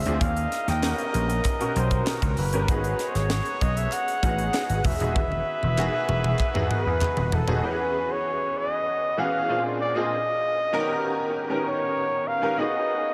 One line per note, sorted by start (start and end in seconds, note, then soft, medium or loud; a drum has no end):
0.00 0.06 C4 medium
0.00 0.06 D4 medium
0.00 0.06 F4 medium
0.00 0.07 G#4 medium
0.00 0.23 E5 medium
0.06 0.18 D2 medium
0.06 0.21 C4 medium
0.06 0.21 D4 medium
0.06 0.21 F4 medium
0.06 0.22 G#4 medium
0.06 closed hi-hat medium
0.21 0.45 D#2 loud
0.21 2.33 D#4 medium
0.21 2.34 A#4 medium
0.21 2.34 D#5 medium
0.21 0.68 F5 loud
0.21 kick loud
0.21 closed hi-hat medium
0.36 closed hi-hat soft
0.52 snare soft
0.52 closed hi-hat medium
0.68 0.92 D#2 medium
0.68 1.12 G5 loud
0.68 snare soft
0.68 closed hi-hat soft
0.82 1.29 B3 medium
0.82 1.30 C#4 medium
0.82 1.30 G4 medium
0.82 1.30 A#4 medium
0.82 snare loud
0.82 clap medium
0.98 closed hi-hat soft
1.14 1.39 A#1 medium
1.14 closed hi-hat medium
1.30 closed hi-hat medium
1.44 kick medium
1.44 clap medium
1.44 closed hi-hat loud
1.60 2.16 B2 medium
1.60 2.16 C#4 medium
1.60 1.67 F#4 medium
1.60 2.17 A#4 medium
1.60 closed hi-hat soft
1.67 2.20 G4 medium
1.76 2.00 B1 medium
1.76 2.10 C5 medium
1.76 closed hi-hat medium
1.91 kick medium
1.91 closed hi-hat soft
2.07 2.40 A#4 medium
2.07 snare loud
2.07 clap medium
2.22 2.34 C#2 medium
2.22 kick medium
2.22 closed hi-hat medium
2.37 2.53 F#1 medium
2.37 3.10 B4 loud
2.37 open hi-hat medium
2.53 2.65 G1 medium
2.53 2.62 B3 medium
2.53 2.62 C#4 medium
2.53 2.63 G4 medium
2.53 2.63 A#4 medium
2.53 closed hi-hat medium
2.68 2.93 G#1 loud
2.68 3.43 B3 medium
2.68 3.44 D#4 medium
2.68 4.81 F#4 medium
2.68 3.44 F#4 medium
2.68 4.81 G#4 medium
2.68 3.44 G#4 medium
2.68 4.81 C#5 medium
2.68 kick loud
2.68 closed hi-hat medium
2.84 closed hi-hat soft
2.99 snare soft
2.99 closed hi-hat medium
3.09 3.18 C5 medium
3.15 3.39 G#1 loud
3.15 3.63 C#5 medium
3.15 snare soft
3.15 closed hi-hat medium
3.30 snare loud
3.30 clap medium
3.45 closed hi-hat soft
3.61 3.86 B1 medium
3.61 3.79 D#5 loud
3.61 kick medium
3.61 closed hi-hat medium
3.77 3.94 E5 medium
3.77 closed hi-hat medium
3.92 4.87 F#5 loud
3.92 clap medium
3.92 closed hi-hat loud
4.08 closed hi-hat soft
4.22 4.47 A1 medium
4.22 4.42 B3 medium
4.22 4.42 D#4 medium
4.22 4.42 F#4 medium
4.22 4.42 G#4 medium
4.22 kick medium
4.22 closed hi-hat medium
4.38 closed hi-hat soft
4.53 4.82 B3 medium
4.53 4.82 D#4 medium
4.53 4.82 F#4 medium
4.53 4.82 G#4 medium
4.53 snare loud
4.53 clap medium
4.69 4.82 G#1 loud
4.69 closed hi-hat medium
4.84 4.97 E1 medium
4.84 6.71 E5 loud
4.84 kick loud
4.84 open hi-hat medium
5.00 5.16 D#1 medium
5.00 5.16 B3 medium
5.00 5.16 D#4 medium
5.00 5.16 F#4 medium
5.00 5.16 G#4 medium
5.00 closed hi-hat medium
5.16 5.40 E1 loud
5.16 7.28 F#4 medium
5.16 7.28 G#4 medium
5.16 7.28 B4 medium
5.16 kick loud
5.16 high tom medium
5.32 high tom soft
5.63 5.87 E1 loud
5.63 high tom medium
5.77 6.25 D#3 medium
5.77 6.24 B3 medium
5.77 6.25 F#4 medium
5.77 6.25 G#4 loud
5.77 clap medium
5.77 mid tom medium
6.09 6.33 E1 medium
6.09 mid tom medium
6.24 mid tom medium
6.39 kick medium
6.39 clap medium
6.53 6.67 E2 medium
6.53 7.10 B3 loud
6.53 7.11 D#4 medium
6.53 7.11 F#4 medium
6.53 7.11 G#4 loud
6.53 mid tom medium
6.71 7.36 B4 loud
6.71 mid tom medium
6.86 6.98 E2 medium
7.01 clap medium
7.01 floor tom loud
7.17 7.32 D#1 medium
7.17 floor tom medium
7.32 7.45 E1 medium
7.32 7.66 A4 medium
7.32 floor tom loud
7.47 7.60 D#1 medium
7.47 7.57 B3 loud
7.47 7.57 D#4 medium
7.47 7.57 F#4 medium
7.47 7.57 G#4 loud
7.47 floor tom medium
7.62 8.38 E3 medium
7.62 8.38 B3 medium
7.62 8.38 C#4 medium
7.62 8.38 F#4 medium
7.62 7.70 G4 medium
7.62 8.13 B4 loud
7.70 8.42 G#4 medium
8.12 8.59 C#5 loud
8.58 9.20 D#5 loud
9.17 9.36 E3 medium
9.17 9.37 B3 medium
9.17 9.37 C#4 medium
9.17 9.37 F#4 medium
9.17 9.37 G#4 medium
9.17 9.64 F5 loud
9.48 9.77 A#2 medium
9.48 9.77 C4 medium
9.48 9.77 D4 medium
9.48 9.77 F4 medium
9.48 9.77 G#4 medium
9.81 9.98 D5 loud
9.94 10.10 A#2 medium
9.94 10.11 C4 medium
9.94 10.11 D4 medium
9.94 10.11 F4 medium
9.94 10.11 G#4 medium
9.94 11.39 D#5 loud
10.73 11.19 D#3 medium
10.73 11.19 B3 medium
10.73 11.19 C#4 medium
10.73 10.79 F#4 medium
10.73 11.20 A#4 loud
10.80 11.23 G4 loud
11.49 12.06 D#3 medium
11.49 12.06 B3 medium
11.49 12.06 C#4 medium
11.49 12.06 G4 medium
11.49 12.06 A#4 medium
11.67 12.29 C#5 loud
12.28 12.61 F5 loud
12.42 12.51 D#3 medium
12.42 12.51 B3 medium
12.42 12.52 C#4 medium
12.42 12.52 G4 medium
12.42 12.52 A#4 medium
12.57 13.14 B3 medium
12.57 13.14 D#4 medium
12.57 13.14 F#4 medium
12.57 13.14 G#4 medium
12.57 13.14 D#5 loud